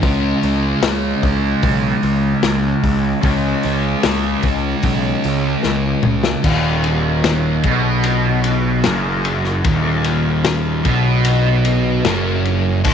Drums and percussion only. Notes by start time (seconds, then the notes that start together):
0.03 kick, open hi-hat
0.43 open hi-hat
0.83 snare, open hi-hat
1.23 kick, open hi-hat
1.63 kick, open hi-hat
2.03 open hi-hat
2.43 snare, open hi-hat
2.84 kick, open hi-hat
3.23 kick, open hi-hat
3.63 open hi-hat
4.03 snare, open hi-hat
4.43 kick, open hi-hat
4.83 kick, open hi-hat
5.24 open hi-hat
5.63 snare
6.03 mid tom
6.24 snare
6.44 kick, crash
6.84 ride
7.24 snare, ride
7.64 kick, ride
8.03 ride
8.44 ride
8.84 snare, ride
9.25 ride
9.44 snare
9.64 kick, ride
10.04 ride
10.44 snare, ride
10.85 kick, ride
11.25 ride
11.65 ride
12.05 snare, ride
12.45 ride
12.84 kick, crash